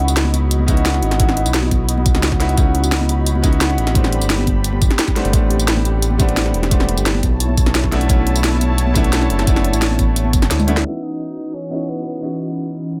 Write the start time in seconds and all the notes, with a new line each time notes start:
Already playing: C#2 B3 C#4 D#4 E4 F#4 D#5 B5
0.08 closed hi-hat, tambourine
0.17 snare, closed hi-hat, tambourine
0.25 high conga
0.33 closed hi-hat, tambourine, high conga
0.51 closed hi-hat, tambourine
0.59 high conga
0.66 B3 C#4 D#4 E4 F#4, kick, closed hi-hat, tambourine
0.77 closed hi-hat
0.85 snare, closed hi-hat, tambourine
0.94 snare
1.02 G#1, closed hi-hat
1.11 snare, closed hi-hat
1.18 B3 C#4 D#4 E4 F#4, kick, closed hi-hat, tambourine
1.29 snare
1.37 closed hi-hat
1.46 B1, closed hi-hat, tambourine
1.54 snare, closed hi-hat, tambourine
1.63 high conga
1.71 kick, closed hi-hat, tambourine, high conga
1.89 closed hi-hat, tambourine
1.98 high conga
2.06 kick, closed hi-hat, tambourine
2.15 C#2, snare, closed hi-hat
2.23 snare, closed hi-hat, tambourine
2.32 kick, snare
2.40 B3 C#4 D#4 E4 F#4, snare, closed hi-hat
2.49 closed hi-hat
2.56 C#2 B3 C#4 D#4 E4 F#4, kick, closed hi-hat, tambourine
2.75 closed hi-hat
2.84 closed hi-hat, tambourine
2.92 snare, closed hi-hat, tambourine
3.01 high conga
3.09 closed hi-hat, tambourine, high conga
3.26 closed hi-hat, tambourine
3.35 high conga
3.42 B3 C#4 D#4 E4 F#4, kick, closed hi-hat, tambourine
3.53 closed hi-hat
3.61 snare, closed hi-hat, tambourine
3.70 snare
3.78 A1, closed hi-hat
3.87 snare, closed hi-hat
3.94 G3 A3 B3 C4 D4 G4, kick, closed hi-hat, tambourine
4.04 snare, tambourine
4.12 closed hi-hat
4.21 G1, closed hi-hat, tambourine
4.30 snare, closed hi-hat, tambourine
4.38 high conga
4.47 kick, closed hi-hat, tambourine, high conga
4.64 closed hi-hat, tambourine
4.73 high conga
4.82 kick, closed hi-hat, tambourine
4.91 snare, closed hi-hat
4.99 snare, closed hi-hat, tambourine
5.08 kick, snare, tambourine
5.15 G3 A3 B3 C4 D4, snare, closed hi-hat
5.25 G1, closed hi-hat
5.32 A1 G3 A3 B3 C4 D4, kick, closed hi-hat, tambourine
5.50 closed hi-hat
5.60 closed hi-hat, tambourine
5.68 snare, closed hi-hat, tambourine
5.77 high conga
5.85 closed hi-hat, tambourine, high conga
6.02 closed hi-hat, tambourine
6.11 high conga
6.18 G3 A3 B3 C4 D4, kick, closed hi-hat, tambourine
6.29 closed hi-hat
6.37 snare, closed hi-hat, tambourine
6.46 snare
6.54 E1, closed hi-hat
6.63 snare, closed hi-hat
6.70 G3 A3 B3 C4 D4, kick, closed hi-hat, tambourine
6.80 snare
6.89 closed hi-hat
6.97 G1, closed hi-hat, tambourine
7.06 snare, closed hi-hat, tambourine
7.15 high conga
7.23 B1 E4 C#5 A5, kick, closed hi-hat, tambourine, high conga
7.40 closed hi-hat, tambourine
7.49 high conga
7.57 kick, closed hi-hat, tambourine
7.66 B1, snare, closed hi-hat
7.75 snare, closed hi-hat, tambourine
7.84 kick, snare
7.91 A3 B3 C#4 D4 E4, snare, closed hi-hat
8.01 closed hi-hat
8.08 B1 A3 B3 C#4 D4 E4, kick, closed hi-hat, tambourine
8.27 closed hi-hat
8.36 closed hi-hat, tambourine
8.44 snare, closed hi-hat, tambourine
8.53 high conga
8.61 closed hi-hat, tambourine, high conga
8.78 closed hi-hat, tambourine
8.87 high conga
8.94 A3 B3 C#4 D4 E4, kick, closed hi-hat, tambourine
9.04 closed hi-hat
9.13 snare, closed hi-hat, tambourine
9.22 snare
9.30 F#1, closed hi-hat
9.39 snare, closed hi-hat
9.46 A3 B3 C#4 D4 E4, kick, closed hi-hat, tambourine
9.56 snare, tambourine
9.64 closed hi-hat
9.73 A1, closed hi-hat, tambourine
9.82 snare, closed hi-hat, tambourine
9.91 high conga
9.98 kick, closed hi-hat, tambourine, high conga
10.16 closed hi-hat, tambourine
10.25 high conga
10.33 F#1, kick, closed hi-hat, tambourine
10.42 snare, closed hi-hat, tambourine
10.51 D2, snare, closed hi-hat, tambourine
10.60 high tom, tambourine
10.67 A3 B3 C#4 D4 E4, closed hi-hat
10.77 snare, closed hi-hat
10.84 E3 B3 C#4 D#4 E4 F#4 B4 D#5, closed hi-hat, tambourine
11.03 D#4
11.11 tambourine
11.20 closed hi-hat, tambourine
11.37 closed hi-hat
11.54 C#4, closed hi-hat, tambourine
11.70 B3 C#4 D#4 E4 F#4, closed hi-hat, tambourine
11.80 closed hi-hat
11.89 B3, closed hi-hat, tambourine
12.06 B3, closed hi-hat
12.15 closed hi-hat
12.21 B3 C#4 D#4 E4 F#4, closed hi-hat, tambourine
12.40 closed hi-hat
12.49 tambourine
12.58 closed hi-hat, tambourine
12.75 closed hi-hat, tambourine
12.92 closed hi-hat, tambourine